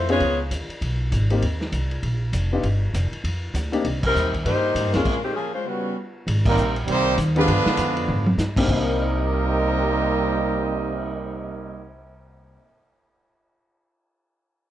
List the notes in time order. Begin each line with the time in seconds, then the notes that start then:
Already playing: F2
0.08 B3 C#4 D#4 F4 G#4 C#5, ride
0.12 G#4
0.20 C#2, kick, ride
0.51 D#2, kick, hi-hat pedal, ride
0.69 muted upright bass stroke, ride
0.81 B1, kick, ride
1.12 G#1, kick, hi-hat pedal, ride
1.30 A#3 C4 D#4 F4 G4, ride
1.42 D#2, kick, ride
1.61 snare
1.72 C2, kick, hi-hat pedal, ride
1.91 ride
2.03 A#1, kick, ride
2.33 F1, kick, hi-hat pedal, ride
2.53 B3 D4 D#4 F4 G4
2.63 G1, kick, ride
2.94 F1, kick, hi-hat pedal, ride
3.12 muted upright bass stroke, ride
3.24 F2, kick, ride
3.54 D2, kick, hi-hat pedal, ride
3.72 A#3 C4 D4 D#4 G4, ride
3.85 C2, kick, ride
4.03 G3 C4 D#4 A#4, kick, crash
4.15 D#2, hi-hat pedal
4.33 kick, ride
4.44 G2 A#3 D#4 G4 C5, kick, ride
4.75 G#2, kick, hi-hat pedal, ride
4.85 G2
4.92 D#2 G#3 A#3 C4 C#4 F4 A#4, snare, ride
4.96 G#4
5.05 kick, crash
5.22 D#3 G#3 C4 G4
5.34 F3 A#3 C#4 G#4
5.54 G#3 C#4 F4 C5
5.64 C#3 G3 B3 C#4 F#4 B4
6.27 G#1, kick, ride
6.45 D#3 G3 A#3, kick, crash
6.49 G3 C4 D#4 A#4
6.57 A#1, hi-hat pedal
6.76 ride
6.86 C2 D#3 G3 A#3 C4 D#4 C5, kick, ride
6.90 G4
7.18 D#2, kick, hi-hat pedal, ride
7.35 D3 F3 G#3 B3 D4 F4 G4 B4, ride
7.48 G2, kick, ride
7.66 muted upright bass stroke, snare
7.77 F2, kick, hi-hat pedal, ride
7.97 ride
8.08 G#2, floor tom
8.26 high tom
8.38 G2, snare, hi-hat pedal
8.56 C3 A#3 C4 D4 D#4 G4, kick, crash
8.63 C3 C4 D#4
8.68 C2 G3 A#3 C4 G4 A#4 D#5, kick, crash
8.76 D#4
8.82 A#4
8.87 cymbal swell
9.00 D5
9.07 F5
9.15 A#5
9.24 D6
9.34 F6
9.45 A#6
9.57 D7